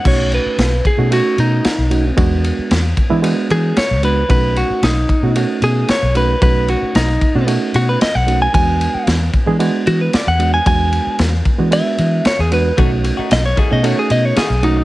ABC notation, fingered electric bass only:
X:1
M:4/4
L:1/16
Q:1/4=113
K:Bmix
V:1 name="Fingered electric bass" clef=bass
B,,,3 z B,,,2 z B,,2 z B,,2 z B,,,3 | E,,3 z E,,2 z E,2 z E,2 z C,,3 | B,,,3 z B,,,2 z B,,2 z B,,2 z B,,,3 | B,,,3 z B,,,2 z B,,2 z B,,2 z B,,,3 |
E,,3 z E,,2 z E,2 z E,2 z E,,3 | E,,3 z E,,2 z E,2 z E,2 z E,,3 | B,,,3 z B,,,2 z B,,2 z B,,2 z B,,,3 |]